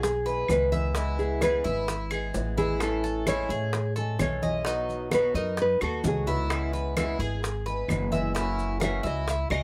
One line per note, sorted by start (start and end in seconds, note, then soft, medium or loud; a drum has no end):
0.00 0.46 B1 medium
0.00 0.25 G#4 medium
0.00 0.46 G#4 medium
0.00 muted steel-string acoustic guitar stroke medium
0.00 high bongo medium
0.00 high conga soft
0.00 maracas medium
0.26 0.49 G#3 soft
0.26 0.49 B3 soft
0.26 0.49 E4 soft
0.26 0.71 B4 medium
0.26 high bongo soft
0.26 high conga soft
0.26 maracas soft
0.48 1.59 C#2 medium
0.48 0.71 D#3 soft
0.48 0.72 G#3 soft
0.48 0.71 B3 medium
0.48 0.71 E4 soft
0.48 1.16 B4 medium
0.48 high bongo soft
0.48 low bongo medium
0.48 high conga medium
0.48 claves medium
0.48 maracas medium
0.72 0.95 D#3 medium
0.72 0.95 G#3 medium
0.72 0.95 B3 medium
0.72 0.95 E4 medium
0.72 0.95 E5 medium
0.72 high bongo soft
0.72 high conga medium
0.72 maracas soft
0.95 1.40 C#3 medium
0.95 1.41 E3 medium
0.95 1.41 G#3 medium
0.95 1.41 B3 medium
0.95 1.41 E4 medium
0.95 1.42 E4 medium
0.95 high bongo medium
0.95 maracas medium
1.18 1.41 G#4 medium
1.18 high conga soft
1.18 maracas soft
1.41 1.64 C#3 medium
1.41 1.64 E3 medium
1.41 1.65 G#3 medium
1.41 1.65 B3 medium
1.41 1.63 E4 medium
1.41 1.64 G#4 medium
1.41 1.86 B4 medium
1.41 high bongo medium
1.41 high conga medium
1.41 claves medium
1.41 maracas medium
1.64 2.31 G#1 medium
1.64 1.87 G#3 soft
1.64 1.87 B3 soft
1.64 2.10 E4 medium
1.64 1.87 E4 soft
1.64 high bongo soft
1.64 high conga soft
1.64 maracas soft
1.88 muted steel-string acoustic guitar stroke medium
1.88 high bongo medium
1.88 high conga soft
1.88 maracas medium
2.11 2.35 G#3 soft
2.11 2.34 B3 soft
2.11 2.34 E4 soft
2.11 2.56 G#4 medium
2.11 high bongo soft
2.11 high conga soft
2.11 claves medium
2.11 maracas soft
2.34 3.44 A1 medium
2.34 2.57 E3 soft
2.34 2.57 G#3 soft
2.34 2.58 B3 medium
2.34 2.57 E4 medium
2.34 high bongo soft
2.34 low bongo medium
2.34 high conga soft
2.34 maracas medium
2.57 2.81 E3 medium
2.57 2.81 G#3 medium
2.57 2.81 B3 medium
2.57 3.02 E4 medium
2.57 2.80 E4 medium
2.57 2.80 G#4 medium
2.57 high bongo soft
2.57 high conga medium
2.57 maracas soft
2.80 3.26 E3 medium
2.80 3.27 C#4 medium
2.80 3.27 E4 medium
2.80 3.25 A4 medium
2.80 high bongo medium
2.80 claves medium
2.80 maracas medium
3.04 3.26 A4 medium
3.04 high conga soft
3.04 maracas soft
3.27 3.50 E3 medium
3.27 3.50 G#3 medium
3.27 3.50 C#4 medium
3.27 3.49 E4 medium
3.27 3.93 C#5 medium
3.27 high bongo medium
3.27 high conga medium
3.27 claves medium
3.27 maracas medium
3.49 4.15 A2 medium
3.49 3.73 G#3 soft
3.49 3.73 C#4 soft
3.49 3.73 E4 medium
3.49 3.95 G#4 medium
3.49 high bongo soft
3.49 high conga soft
3.49 maracas soft
3.73 muted steel-string acoustic guitar stroke medium
3.73 high bongo medium
3.73 high conga soft
3.73 maracas medium
3.96 4.19 G#3 soft
3.96 4.20 C#4 soft
3.96 4.19 E4 soft
3.96 4.41 A4 medium
3.96 4.20 A4 soft
3.96 high bongo soft
3.96 high conga soft
3.96 maracas soft
4.19 5.29 B1 medium
4.19 4.42 E3 soft
4.19 4.42 G#3 medium
4.19 4.42 C#4 soft
4.19 4.41 E4 soft
4.19 4.63 C#5 medium
4.19 high bongo soft
4.19 low bongo medium
4.19 high conga medium
4.19 claves medium
4.19 maracas medium
4.42 4.65 G#3 medium
4.42 4.65 C#4 medium
4.42 4.65 E4 medium
4.42 4.65 D#5 medium
4.42 high bongo soft
4.42 high conga medium
4.42 maracas soft
4.65 5.10 B2 medium
4.65 5.10 F#3 medium
4.65 5.11 B3 medium
4.65 5.11 D#4 medium
4.65 5.11 F#4 medium
4.65 high bongo medium
4.65 high conga soft
4.65 maracas medium
4.89 high conga soft
4.89 maracas soft
5.11 5.34 B2 medium
5.11 5.34 F#3 medium
5.11 5.34 B3 medium
5.11 5.34 D#4 medium
5.11 5.34 F#4 medium
5.11 5.32 F#4 medium
5.11 5.35 B4 medium
5.11 high bongo medium
5.11 high conga medium
5.11 claves medium
5.11 maracas medium
5.34 5.78 F#2 medium
5.34 5.57 B3 soft
5.34 5.57 D#4 soft
5.34 5.80 D#4 medium
5.34 5.56 F#4 soft
5.34 5.58 A#4 medium
5.34 high bongo soft
5.34 high conga soft
5.34 maracas soft
5.57 muted steel-string acoustic guitar stroke medium
5.57 high bongo medium
5.57 high conga soft
5.57 maracas medium
5.62 5.82 B4 medium
5.80 6.03 D#2 medium
5.80 6.02 B3 soft
5.80 6.03 D#4 soft
5.80 6.03 F#4 soft
5.80 6.26 F#4 medium
5.80 6.05 A4 medium
5.80 high bongo soft
5.80 high conga soft
5.80 claves medium
5.80 maracas soft
6.03 7.13 C#2 medium
6.03 6.26 F#3 soft
6.03 6.26 B3 soft
6.03 6.25 D#4 medium
6.03 6.25 F#4 medium
6.03 high bongo soft
6.03 low bongo medium
6.03 high conga loud
6.03 maracas medium
6.07 6.28 G#4 medium
6.26 6.49 F#3 medium
6.26 6.50 B3 medium
6.26 6.49 D#4 medium
6.26 6.72 E4 medium
6.26 6.49 F#4 medium
6.26 high bongo soft
6.26 low conga medium
6.26 maracas soft
6.49 6.95 C#3 medium
6.49 6.95 E3 medium
6.49 6.96 G#3 medium
6.49 6.96 B3 medium
6.49 6.96 E4 medium
6.49 high bongo medium
6.49 high conga soft
6.49 claves medium
6.49 maracas medium
6.73 6.96 B4 medium
6.73 high conga soft
6.73 maracas soft
6.96 7.19 C#3 medium
6.96 7.19 E3 medium
6.96 7.19 G#3 medium
6.96 7.19 B3 medium
6.96 7.19 E4 medium
6.96 7.17 E4 medium
6.96 high bongo medium
6.96 high conga medium
6.96 claves medium
6.96 maracas medium
7.18 7.85 G#1 medium
7.18 7.42 G#3 soft
7.18 7.42 B3 soft
7.18 7.41 E4 soft
7.18 7.65 G#4 medium
7.18 high bongo soft
7.18 high conga soft
7.18 maracas soft
7.43 muted steel-string acoustic guitar stroke medium
7.43 high bongo medium
7.43 high conga soft
7.43 maracas medium
7.66 7.89 G#3 soft
7.66 7.89 B3 soft
7.66 7.89 E4 soft
7.66 8.11 B4 medium
7.66 high bongo soft
7.66 high conga soft
7.66 maracas soft
7.88 8.98 F#1 medium
7.88 8.11 E3 soft
7.88 8.12 G#3 medium
7.88 8.11 B3 soft
7.88 8.11 E4 medium
7.88 high bongo soft
7.88 low bongo medium
7.88 high conga medium
7.88 claves medium
7.88 maracas medium
8.12 8.35 E3 medium
8.12 8.35 G#3 medium
8.12 8.34 B3 medium
8.12 8.34 E4 medium
8.12 8.34 E5 medium
8.12 high bongo soft
8.12 high conga medium
8.12 maracas soft
8.35 8.80 C#3 medium
8.35 8.81 E3 medium
8.35 8.81 A#3 medium
8.35 8.81 C#4 medium
8.35 8.80 E4 medium
8.35 8.82 F#4 medium
8.35 high bongo medium
8.35 maracas medium
8.58 high conga soft
8.58 maracas soft
8.80 9.04 C#3 medium
8.80 9.04 E3 medium
8.80 9.04 A#3 medium
8.80 9.04 C#4 medium
8.80 9.03 F#4 medium
8.80 9.03 A#4 medium
8.80 9.05 E5 medium
8.80 high bongo medium
8.80 high conga medium
8.80 claves medium
8.80 maracas medium
9.03 9.47 C#2 medium
9.03 9.27 A#3 soft
9.03 9.27 C#4 soft
9.03 9.49 E4 medium
9.03 9.27 F#4 soft
9.03 9.30 D#5 medium
9.03 high bongo soft
9.03 high conga soft
9.03 maracas soft
9.28 9.51 E5 loud
9.28 muted steel-string acoustic guitar stroke medium
9.28 high bongo medium
9.28 high conga soft
9.28 maracas medium
9.50 9.63 C#2 medium
9.50 9.63 A#3 soft
9.50 9.63 C#4 soft
9.50 9.63 F#4 medium
9.50 9.63 A#4 medium
9.50 9.63 D#5 medium
9.50 high bongo soft
9.50 high conga soft
9.50 claves medium
9.50 maracas soft